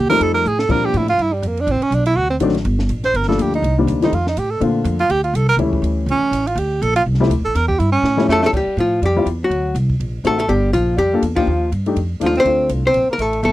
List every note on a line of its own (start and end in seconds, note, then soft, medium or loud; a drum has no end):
0.00 0.20 D#2 loud
0.09 0.43 F3 medium
0.09 0.43 G3 medium
0.09 0.43 A3 medium
0.09 0.43 C4 medium
0.09 0.43 D#4 medium
0.09 0.24 A#4 loud
0.09 ride soft
0.20 0.44 F2 medium
0.20 0.34 A4 medium
0.20 ride medium
0.34 0.49 A#4 loud
0.45 0.68 A2 medium
0.45 0.61 G#4 medium
0.45 hi-hat pedal medium
0.59 0.73 A4 loud
0.59 snare medium
0.69 0.93 A#2 medium
0.69 1.05 F3 medium
0.69 1.05 G3 medium
0.69 1.05 A#3 soft
0.69 1.05 C4 medium
0.69 1.06 D4 medium
0.69 0.87 A#4 medium
0.69 kick medium
0.69 crash medium
0.85 0.99 G4 medium
0.94 1.17 A2 medium
0.94 1.09 E4 medium
0.94 hi-hat pedal soft
0.94 ride medium
1.08 1.24 F4 loud
1.08 ride soft
1.18 1.42 G2 medium
1.18 ride medium
1.22 1.35 E4 medium
1.33 1.48 G3 medium
1.42 1.66 F2 medium
1.42 hi-hat pedal medium
1.42 ride medium
1.47 1.62 A#3 medium
1.57 1.72 D4 loud
1.57 ride soft
1.67 1.80 A1 medium
1.67 ride medium
1.71 1.84 C4 medium
1.82 1.96 C#4 loud
1.82 ride soft
1.91 2.15 B1 medium
1.91 hi-hat pedal medium
1.91 ride medium
1.95 2.06 D4 medium
2.06 2.18 E4 loud
2.06 ride medium
2.16 2.39 D2 medium
2.16 2.29 F#4 loud
2.30 2.36 C4 medium
2.40 2.64 A1 medium
2.40 2.53 D#3 medium
2.40 2.53 F#3 medium
2.40 2.54 A3 medium
2.40 2.54 C4 medium
2.40 2.54 D4 medium
2.40 hi-hat pedal medium
2.40 ride medium
2.49 snare soft
2.54 snare soft
2.54 ride soft
2.65 2.89 G1 loud
2.65 ride medium
2.79 snare medium
2.89 3.13 A#1 medium
2.89 hi-hat pedal medium
2.89 ride medium
3.04 3.18 C5 loud
3.04 snare soft
3.04 ride soft
3.14 3.37 G1 medium
3.14 3.28 A#4 medium
3.14 ride medium
3.23 snare soft
3.28 3.61 F3 medium
3.28 3.61 G3 medium
3.28 3.62 A3 medium
3.28 3.62 A#3 medium
3.28 3.62 D4 medium
3.28 3.44 A4 medium
3.28 snare soft
3.38 3.62 D2 medium
3.38 hi-hat pedal medium
3.38 ride medium
3.42 3.54 G4 medium
3.54 3.77 D#4 medium
3.54 ride soft
3.62 3.87 C2 medium
3.62 ride medium
3.78 4.01 D#3 medium
3.78 4.01 G3 medium
3.78 4.01 A#3 medium
3.78 4.01 C4 medium
3.78 4.02 D4 medium
3.87 4.11 D2 medium
3.87 hi-hat pedal medium
3.87 ride medium
4.02 4.11 D#3 medium
4.02 4.12 G3 medium
4.02 4.12 A3 medium
4.02 4.12 C4 medium
4.02 4.12 D#4 medium
4.02 4.16 D#4 medium
4.02 snare soft
4.02 ride soft
4.12 4.36 F2 medium
4.12 4.27 F4 medium
4.12 ride medium
4.27 4.40 D#4 medium
4.27 snare medium
4.37 4.60 A2 medium
4.37 4.52 G4 medium
4.37 hi-hat pedal medium
4.37 ride medium
4.51 4.61 A4 medium
4.60 4.84 A#2 medium
4.60 4.97 D3 medium
4.60 4.96 A3 medium
4.60 4.97 A#3 medium
4.60 4.97 C4 medium
4.60 4.97 F4 medium
4.60 ride medium
4.84 5.09 F2 loud
4.84 hi-hat pedal soft
4.84 ride medium
4.99 5.12 F4 loud
4.99 ride soft
5.09 5.33 D2 medium
5.09 5.23 G4 loud
5.09 ride medium
5.24 5.37 F4 medium
5.24 ride soft
5.33 5.56 C2 medium
5.33 5.48 A4 medium
5.33 hi-hat pedal soft
5.33 ride medium
5.49 5.55 A#4 loud
5.49 ride soft
5.57 5.81 C#2 medium
5.57 6.26 E3 medium
5.57 6.26 G3 medium
5.57 6.26 A3 medium
5.57 6.27 C#4 medium
5.57 6.27 E4 medium
5.57 ride medium
5.73 kick medium
5.82 6.06 D2 medium
5.82 hi-hat pedal soft
5.82 ride medium
6.06 6.20 C#2 medium
6.06 ride medium
6.11 6.49 C#4 loud
6.21 muted upright bass stroke soft
6.31 6.55 A1 medium
6.31 hi-hat pedal soft
6.31 ride medium
6.47 6.60 F4 medium
6.47 ride medium
6.55 6.80 D2 medium
6.55 6.83 G4 medium
6.55 ride medium
6.82 7.06 A#1 medium
6.82 6.95 A4 loud
6.82 hi-hat pedal medium
6.82 ride medium
6.96 7.02 F4 loud
6.96 ride medium
7.06 7.29 C2 medium
7.14 snare soft
7.20 7.30 F3 medium
7.20 7.30 G3 medium
7.20 7.30 A3 medium
7.20 7.30 C4 medium
7.20 7.30 E4 medium
7.20 snare soft
7.30 7.40 D2 medium
7.30 hi-hat pedal medium
7.30 ride medium
7.39 7.45 C2 medium
7.45 7.54 A1 medium
7.45 7.58 A4 medium
7.55 7.79 E2 loud
7.55 7.68 A#4 loud
7.55 snare soft
7.55 ride medium
7.68 7.80 G4 loud
7.68 kick medium
7.79 8.02 G2 medium
7.79 7.91 E4 medium
7.79 hi-hat pedal medium
7.79 ride medium
7.92 8.25 C#4 loud
8.03 8.27 A2 medium
8.03 snare medium
8.17 8.50 F3 medium
8.17 8.51 G3 medium
8.17 8.51 A3 medium
8.17 8.51 C#4 medium
8.17 8.51 E4 medium
8.17 snare medium
8.28 8.52 F2 medium
8.28 8.42 A3 loud
8.28 snare medium
8.28 hi-hat pedal medium
8.32 8.45 A4 loud
8.43 8.47 A3 medium
8.43 8.50 A4 loud
8.43 snare medium
8.53 8.66 D2 medium
8.53 8.76 G3 medium
8.53 8.78 G4 medium
8.53 kick medium
8.53 crash medium
8.66 muted upright bass stroke soft
8.77 9.01 A2 medium
8.77 9.01 F3 medium
8.77 9.04 F4 medium
8.77 hi-hat pedal soft
8.77 ride medium
9.02 9.25 F2 medium
9.02 9.25 G3 medium
9.02 9.27 G4 medium
9.02 ride medium
9.16 9.26 G3 medium
9.16 9.26 C4 medium
9.16 9.26 E4 medium
9.16 9.26 F4 medium
9.26 9.49 E2 medium
9.26 hi-hat pedal medium
9.26 ride medium
9.43 9.75 F#3 medium
9.43 9.75 F#4 medium
9.50 9.74 D2 medium
9.50 ride soft
9.75 9.99 C2 medium
9.75 hi-hat pedal medium
9.75 ride medium
9.90 kick medium
10.00 10.23 A#1 medium
10.00 ride medium
10.24 10.48 A1 medium
10.24 10.37 A3 medium
10.24 10.37 C4 medium
10.24 10.38 D#4 medium
10.24 10.38 F#4 medium
10.24 10.39 A4 loud
10.24 hi-hat pedal medium
10.24 ride medium
10.37 10.48 A3 medium
10.37 10.50 A4 loud
10.37 ride soft
10.48 10.73 G1 medium
10.48 10.72 G3 medium
10.48 10.73 G4 medium
10.48 ride medium
10.73 10.97 A#1 medium
10.73 10.96 F3 medium
10.73 10.98 F4 medium
10.73 hi-hat pedal soft
10.73 ride medium
10.96 11.21 F2 medium
10.96 11.20 G3 medium
10.96 11.21 G4 medium
10.96 ride medium
11.13 11.22 A#3 medium
11.13 11.23 D4 medium
11.13 11.23 F4 medium
11.13 11.23 A4 medium
11.22 11.46 E2 medium
11.22 hi-hat pedal medium
11.22 ride medium
11.35 11.69 F3 medium
11.35 11.46 A#3 medium
11.35 11.47 D4 medium
11.35 11.47 D#4 soft
11.35 11.69 F4 medium
11.35 11.47 G4 medium
11.35 kick medium
11.35 ride medium
11.47 11.71 D#2 medium
11.72 11.95 G2 medium
11.72 hi-hat pedal soft
11.72 ride medium
11.86 11.96 A3 medium
11.86 11.96 D4 medium
11.86 11.96 D#4 medium
11.86 11.96 G4 medium
11.86 ride soft
11.96 12.20 F2 medium
11.96 ride medium
12.20 12.44 D#2 medium
12.20 12.35 F3 medium
12.20 12.44 A3 medium
12.20 12.45 D4 medium
12.20 12.46 D#4 medium
12.20 12.45 F4 medium
12.20 hi-hat pedal soft
12.20 ride medium
12.26 12.38 F4 medium
12.35 12.69 C4 medium
12.35 ride soft
12.40 12.70 C5 loud
12.44 12.69 D2 medium
12.44 12.81 A3 medium
12.44 12.82 C4 soft
12.44 12.82 D4 soft
12.44 12.82 F4 medium
12.44 ride medium
12.69 12.93 C2 medium
12.69 hi-hat pedal medium
12.69 ride medium
12.86 13.08 C4 medium
12.86 13.08 C5 loud
12.94 13.07 A#1 medium
12.94 ride medium
13.09 13.21 A#3 medium
13.09 muted upright bass stroke soft
13.13 13.22 A#4 medium
13.18 13.42 A1 medium
13.18 13.43 A3 medium
13.18 13.44 A4 loud
13.18 hi-hat pedal medium
13.18 ride medium
13.33 ride soft
13.43 13.52 G1 medium
13.43 13.52 A3 medium
13.43 13.52 A4 medium
13.43 ride medium